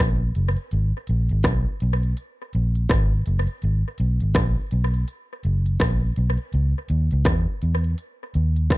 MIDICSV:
0, 0, Header, 1, 3, 480
1, 0, Start_track
1, 0, Key_signature, 5, "minor"
1, 0, Tempo, 726392
1, 472, Time_signature, 4, 2, 24, 8
1, 5801, End_track
2, 0, Start_track
2, 0, Title_t, "Fingered electric bass"
2, 0, Program_c, 0, 33
2, 0, Note_on_c, 0, 34, 73
2, 202, Note_off_c, 0, 34, 0
2, 240, Note_on_c, 0, 30, 72
2, 364, Note_off_c, 0, 30, 0
2, 481, Note_on_c, 0, 32, 91
2, 604, Note_off_c, 0, 32, 0
2, 722, Note_on_c, 0, 34, 90
2, 845, Note_off_c, 0, 34, 0
2, 866, Note_on_c, 0, 32, 85
2, 944, Note_off_c, 0, 32, 0
2, 957, Note_on_c, 0, 35, 79
2, 1082, Note_off_c, 0, 35, 0
2, 1203, Note_on_c, 0, 35, 88
2, 1406, Note_off_c, 0, 35, 0
2, 1683, Note_on_c, 0, 34, 88
2, 1887, Note_off_c, 0, 34, 0
2, 1919, Note_on_c, 0, 32, 77
2, 2124, Note_off_c, 0, 32, 0
2, 2162, Note_on_c, 0, 30, 87
2, 2285, Note_off_c, 0, 30, 0
2, 2402, Note_on_c, 0, 32, 91
2, 2525, Note_off_c, 0, 32, 0
2, 2642, Note_on_c, 0, 35, 95
2, 2765, Note_off_c, 0, 35, 0
2, 2788, Note_on_c, 0, 32, 77
2, 2865, Note_off_c, 0, 32, 0
2, 2877, Note_on_c, 0, 34, 84
2, 3002, Note_off_c, 0, 34, 0
2, 3121, Note_on_c, 0, 35, 82
2, 3326, Note_off_c, 0, 35, 0
2, 3600, Note_on_c, 0, 30, 84
2, 3805, Note_off_c, 0, 30, 0
2, 3837, Note_on_c, 0, 34, 77
2, 4043, Note_off_c, 0, 34, 0
2, 4080, Note_on_c, 0, 35, 84
2, 4204, Note_off_c, 0, 35, 0
2, 4320, Note_on_c, 0, 37, 99
2, 4443, Note_off_c, 0, 37, 0
2, 4558, Note_on_c, 0, 39, 98
2, 4683, Note_off_c, 0, 39, 0
2, 4707, Note_on_c, 0, 37, 90
2, 4785, Note_off_c, 0, 37, 0
2, 4796, Note_on_c, 0, 40, 93
2, 4921, Note_off_c, 0, 40, 0
2, 5040, Note_on_c, 0, 40, 79
2, 5244, Note_off_c, 0, 40, 0
2, 5519, Note_on_c, 0, 39, 87
2, 5756, Note_off_c, 0, 39, 0
2, 5756, Note_on_c, 0, 37, 77
2, 5801, Note_off_c, 0, 37, 0
2, 5801, End_track
3, 0, Start_track
3, 0, Title_t, "Drums"
3, 0, Note_on_c, 9, 37, 112
3, 66, Note_off_c, 9, 37, 0
3, 232, Note_on_c, 9, 42, 84
3, 298, Note_off_c, 9, 42, 0
3, 375, Note_on_c, 9, 42, 42
3, 441, Note_off_c, 9, 42, 0
3, 472, Note_on_c, 9, 42, 70
3, 538, Note_off_c, 9, 42, 0
3, 708, Note_on_c, 9, 42, 79
3, 774, Note_off_c, 9, 42, 0
3, 854, Note_on_c, 9, 42, 49
3, 920, Note_off_c, 9, 42, 0
3, 946, Note_on_c, 9, 42, 93
3, 952, Note_on_c, 9, 36, 119
3, 956, Note_on_c, 9, 37, 115
3, 1012, Note_off_c, 9, 42, 0
3, 1018, Note_off_c, 9, 36, 0
3, 1022, Note_off_c, 9, 37, 0
3, 1192, Note_on_c, 9, 42, 80
3, 1258, Note_off_c, 9, 42, 0
3, 1343, Note_on_c, 9, 42, 49
3, 1409, Note_off_c, 9, 42, 0
3, 1434, Note_on_c, 9, 42, 85
3, 1500, Note_off_c, 9, 42, 0
3, 1673, Note_on_c, 9, 42, 67
3, 1739, Note_off_c, 9, 42, 0
3, 1819, Note_on_c, 9, 42, 46
3, 1885, Note_off_c, 9, 42, 0
3, 1911, Note_on_c, 9, 42, 91
3, 1913, Note_on_c, 9, 36, 117
3, 1921, Note_on_c, 9, 37, 120
3, 1977, Note_off_c, 9, 42, 0
3, 1979, Note_off_c, 9, 36, 0
3, 1987, Note_off_c, 9, 37, 0
3, 2153, Note_on_c, 9, 42, 78
3, 2219, Note_off_c, 9, 42, 0
3, 2295, Note_on_c, 9, 42, 46
3, 2361, Note_off_c, 9, 42, 0
3, 2392, Note_on_c, 9, 42, 68
3, 2459, Note_off_c, 9, 42, 0
3, 2630, Note_on_c, 9, 42, 77
3, 2696, Note_off_c, 9, 42, 0
3, 2777, Note_on_c, 9, 42, 49
3, 2843, Note_off_c, 9, 42, 0
3, 2869, Note_on_c, 9, 42, 83
3, 2873, Note_on_c, 9, 36, 119
3, 2880, Note_on_c, 9, 37, 114
3, 2936, Note_off_c, 9, 42, 0
3, 2939, Note_off_c, 9, 36, 0
3, 2946, Note_off_c, 9, 37, 0
3, 3113, Note_on_c, 9, 42, 75
3, 3179, Note_off_c, 9, 42, 0
3, 3264, Note_on_c, 9, 42, 50
3, 3330, Note_off_c, 9, 42, 0
3, 3355, Note_on_c, 9, 42, 82
3, 3421, Note_off_c, 9, 42, 0
3, 3591, Note_on_c, 9, 42, 63
3, 3657, Note_off_c, 9, 42, 0
3, 3740, Note_on_c, 9, 42, 46
3, 3806, Note_off_c, 9, 42, 0
3, 3830, Note_on_c, 9, 42, 93
3, 3832, Note_on_c, 9, 36, 106
3, 3841, Note_on_c, 9, 37, 118
3, 3896, Note_off_c, 9, 42, 0
3, 3898, Note_off_c, 9, 36, 0
3, 3907, Note_off_c, 9, 37, 0
3, 4073, Note_on_c, 9, 42, 80
3, 4139, Note_off_c, 9, 42, 0
3, 4214, Note_on_c, 9, 42, 43
3, 4280, Note_off_c, 9, 42, 0
3, 4313, Note_on_c, 9, 42, 72
3, 4379, Note_off_c, 9, 42, 0
3, 4550, Note_on_c, 9, 42, 85
3, 4616, Note_off_c, 9, 42, 0
3, 4698, Note_on_c, 9, 42, 55
3, 4764, Note_off_c, 9, 42, 0
3, 4789, Note_on_c, 9, 42, 89
3, 4792, Note_on_c, 9, 36, 122
3, 4799, Note_on_c, 9, 37, 122
3, 4855, Note_off_c, 9, 42, 0
3, 4858, Note_off_c, 9, 36, 0
3, 4865, Note_off_c, 9, 37, 0
3, 5034, Note_on_c, 9, 42, 78
3, 5100, Note_off_c, 9, 42, 0
3, 5183, Note_on_c, 9, 42, 48
3, 5249, Note_off_c, 9, 42, 0
3, 5273, Note_on_c, 9, 42, 94
3, 5339, Note_off_c, 9, 42, 0
3, 5512, Note_on_c, 9, 42, 73
3, 5578, Note_off_c, 9, 42, 0
3, 5658, Note_on_c, 9, 42, 47
3, 5724, Note_off_c, 9, 42, 0
3, 5750, Note_on_c, 9, 42, 93
3, 5751, Note_on_c, 9, 36, 118
3, 5761, Note_on_c, 9, 37, 115
3, 5801, Note_off_c, 9, 36, 0
3, 5801, Note_off_c, 9, 37, 0
3, 5801, Note_off_c, 9, 42, 0
3, 5801, End_track
0, 0, End_of_file